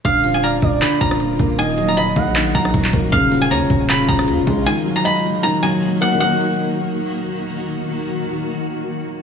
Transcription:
<<
  \new Staff \with { instrumentName = "Guzheng" } { \time 4/4 \key ees \minor \tempo 4 = 156 f''8. aes''16 bes''4 ces'''8 bes''4. | aes''8. bes''16 ces'''4 r8 bes''4. | f''8. aes''16 bes''4 ces'''8 bes''4. | aes''8. bes''16 ces'''4 bes''8 aes''4 ges''8 |
ges''2. r4 | r1 | }
  \new Staff \with { instrumentName = "Soft synth lead" } { \time 4/4 \key ees \minor f''4. d''4. r4 | ees''4. ges''4. r4 | r1 | r1 |
r1 | r1 | }
  \new Staff \with { instrumentName = "Ambient pad" } { \time 4/4 \key ees \minor << { <d f'>1 | <ees ges'>1 | <des f'>1 | <ees ges'>1 |
<ees bes ges'>1~ | <ees bes ges'>1 | } \\ { bes1~ | bes1 | aes1 | bes1 |
r1 | r1 | } >> }
  \new Staff \with { instrumentName = "Grand piano" } { \clef bass \time 4/4 \key ees \minor d8 f8 d''4 d8 f4 bes8 | ees8 ges8 ees''4 ees8 ges4 bes8 | des8 f8 des''4 des8 f4 aes8 | ees8 ges8 ees''4 ees8 ges4 bes8 |
<ees ges bes ees'>1~ | <ees ges bes ees'>1 | }
  \new Staff \with { instrumentName = "808-style bass" } { \clef bass \time 4/4 \key ees \minor ees,,4. ees,,8 r8 ees,,4 ees,,8~ | ees,,4. bes,,4 bes,,8 ees,,8 ees,,8 | ees,,4 ees,16 ees,,16 ees,,4 ees,,8 ees,16 ees,,16 bes,,8 | r1 |
r1 | r1 | }
  \new DrumStaff \with { instrumentName = "Drums" } \drummode { \time 4/4 <hh bd>8 hho8 hh8 <hh bd>8 <hc hh ss>8 <hh bd>16 ss16 hh8 <hh bd>8 | hh8 hh8 hh8 <hh bd>8 <hc hh ss>8 <hh bd>16 ss16 <hh bd>16 hc16 <hh bd>8 | <hh bd>8 hho8 hh8 <hh bd>8 <hc hh ss>8 <hh bd>16 ss16 hh8 <hh bd>8 | r4 r4 r4 r4 |
r4 r4 r4 r4 | r4 r4 r4 r4 | }
>>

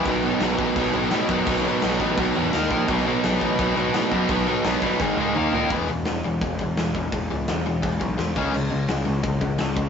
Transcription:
<<
  \new Staff \with { instrumentName = "Overdriven electric guitar" } { \clef bass \time 4/4 \key e \major \tempo 4 = 170 <b, dis fis b dis'>8 <b, dis fis b dis'>8 <b, dis fis b dis'>8 <b, dis fis b dis'>8 <b, dis fis b dis'>8 <b, dis fis b dis'>8 <b, dis fis b dis'>8 <b, dis fis b dis'>8 | <b, dis fis b dis'>8 <b, dis fis b dis'>8 <b, dis fis b dis'>8 <b, dis fis b dis'>8 <b, dis fis b dis'>8 <b, dis fis b dis'>8 <dis ais dis' ais'>8 <dis ais dis' ais'>8 | <b, fis b dis'>8 <b, fis b dis'>8 <b, fis b dis'>8 <b, fis b dis'>8 <b, fis b dis'>8 <b, fis b dis'>8 <b, fis b dis'>8 <b, fis b dis'>8 | <b, fis b dis'>8 <b, fis b dis'>8 <b, fis b dis'>8 <b, fis b dis'>8 <gis, dis gis dis'>8 <gis, dis gis dis'>8 <dis ais dis' ais'>8 <dis ais dis' ais'>8 |
<e gis b>8 <e gis>8 <e gis>8 <e gis>8 <e gis>8 <e gis>8 <e gis>8 <e gis>8 | <e gis>8 <e gis>8 <e gis>8 <e gis>8 <e gis>8 <e gis>8 <e gis>8 <cis gis cis'>8 | <cis gis>8 <cis gis>8 <cis gis>8 <cis gis>8 <cis gis>8 <cis gis>8 <cis gis>8 <cis gis>8 | }
  \new Staff \with { instrumentName = "Overdriven electric guitar" } { \clef bass \time 4/4 \key e \major <b, fis b>8 <b, fis b>8 <b, fis b>8 <b, fis b>8 <b, fis b>8 <b, fis b>8 <b, fis b>8 <b, fis b>8 | <b, fis b>8 <b, fis b>8 <b, fis b>8 <b, fis b>8 <b, fis b>8 <b, fis b>8 <dis ais dis'>8 <dis ais dis'>8 | <b, fis b>8 <b, fis b>8 <b, fis b>8 <b, fis b>8 <b, fis b>8 <b, fis b>8 <b, fis b>8 <b, fis b>8 | <b, fis b>8 <b, fis b>8 <b, fis b>8 <b, fis b>8 <gis, dis gis>8 <gis, dis gis>8 <dis ais dis'>8 <dis ais dis'>8 |
r1 | r1 | r1 | }
  \new Staff \with { instrumentName = "Picked electric bass" } { \clef bass \time 4/4 \key e \major b,,4 b,,8 a,,8 b,,8 b,,8 a,8 fis,8 | b,,4 b,,8 a,,8 b,,8 e,8 dis,8 ais,,8 | b,,4 b,,8 a,,8 b,,8 b,,8 a,8 fis,8 | b,,4 b,,8 g,,8 gis,,8 cis,8 dis,8 ais,8 |
e,,8 e,,8 e,,8 e,,8 e,,8 e,,8 e,,8 e,,8 | e,,8 cis,8 e,,8 e,,8 e,,8 b,,8 e,,8 cis,8 | cis,8 cis,8 cis,8 cis,8 cis,8 cis,8 cis,8 cis,8 | }
  \new DrumStaff \with { instrumentName = "Drums" } \drummode { \time 4/4 <cymc bd>8 cymc8 <cymc sn>8 <cymc bd>8 <cymc bd>8 cymc8 <cymc sn>8 <cymc bd>8 | <cymc bd>8 cymc8 <cymc sn>8 <cymc bd>8 <cymc bd>8 cymc8 <cymc sn>8 <cymc bd>8 | <cymc bd>8 cymc8 <cymc sn>8 <cymc bd>8 <cymc bd>8 cymc8 <cymc sn>8 <cymc bd>8 | <cymc bd>8 cymc8 <cymc sn>8 <cymc bd>8 <bd sn>4 toml8 tomfh8 |
<hho bd>8 hho8 <hho sn>8 hho8 <hho bd>8 <hho bd>8 <hho sn>8 <hho bd>8 | <hho bd>8 hho8 <hho sn>8 hho8 <hho bd>8 <hho bd>8 <hho sn>8 <hho bd>8 | cymc8 hho8 <hho sn>8 hho8 <hho bd>8 <hho bd>8 <hho sn>8 <hho bd>8 | }
>>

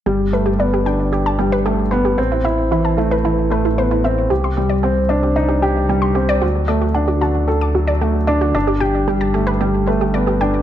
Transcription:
<<
  \new Staff \with { instrumentName = "Synth arpeggio sound" } { \time 4/4 \key g \major \tempo 4 = 113 g'16 r16 b'16 g'16 d''16 g'16 g''16 r16 g'16 a''16 g'16 b'16 g'16 r16 b'16 g'16 | c''16 e'16 e''16 r16 e'16 a''16 e'16 b'16 e'16 r16 b'16 e'16 c''16 e'16 e''16 r16 | g'16 c'''16 g'16 d''16 g'16 r16 d''16 g'16 ees''16 g'16 g''16 r16 g'16 c'''16 g'16 d''16 | fis'16 r16 d''16 fis'16 fis''16 fis'16 a''16 r16 fis'16 d'''16 fis'16 d''16 fis'16 r16 d''16 fis'16 |
d''16 g'16 g''16 r16 g'16 a''16 g'16 b'16 g'16 r16 b'16 g'16 d''16 g'16 g''16 r16 | }
  \new Staff \with { instrumentName = "Upright piano" } { \time 4/4 \key g \major g8 a8 b8 d'8 g'8 g8 a8 b8 | c'8 e'8 e8 a8 e8 a8 b8 c'8 | g'8 g8 c'8 d'8 ees'8 g'8 g8 c'8 | fis8 a8 d'8 fis'8 a'8 fis8 a8 d'8 |
d'8 g'8 g8 a8 g8 a8 b8 d'8 | }
  \new Staff \with { instrumentName = "Detuned saw bass" } { \clef bass \time 4/4 \key g \major g,,1 | a,,1 | c,1 | d,1 |
g,,1 | }
>>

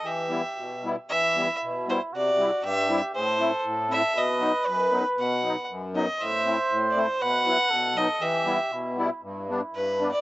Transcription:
<<
  \new Staff \with { instrumentName = "Fiddle" } { \time 2/4 \key e \minor \tempo 4 = 118 e''4. r8 | e''4 r8 c''8 | d''4 e''8. r16 | c''4 r8 e''8 |
dis''4 b'8. r16 | fis''4 r8 dis''8 | e''4 r16. d''32 c''8 | fis''4. dis''8 |
e''4 r4 | \key g \major r4 b'8. d''16 | }
  \new Staff \with { instrumentName = "Muted trumpet" } { \time 2/4 \key e \minor g'4. r8 | e'2 | fis'4 g'4 | a'2 |
b'2~ | b'4. r8 | c''2 | b'4 a'4 |
g'4 e'4 | \key g \major e'2 | }
  \new Staff \with { instrumentName = "Accordion" } { \time 2/4 \key e \minor << { r8 <g b e'>8 r8 <g b e'>8 | r8 <g b e'>8 r8 <g b e'>8 | r8 <g c' e'>8 r8 <g c' e'>8 | r8 <a c' e'>8 r8 <a c' e'>8 |
r8 <fis b dis'>8 r8 <fis b dis'>8 | r8 <fis b dis'>8 r8 <fis b dis'>8 | r8 <a c' e'>8 r8 <a c' e'>8 | r8 <fis b e'>8 r8 <fis b dis'>8 |
r8 <g b e'>8 r8 <g b e'>8 | \key g \major r8 <g b d'>8 r8 <g b d'>8 | } \\ { e4 b,4 | e4 b,4 | c4 g,4 | a,4 a,4 |
b,4 fis,4 | b,4 fis,4 | a,4 a,4 | b,4 b,4 |
e4 b,4 | g,4 g,4 | } >> }
>>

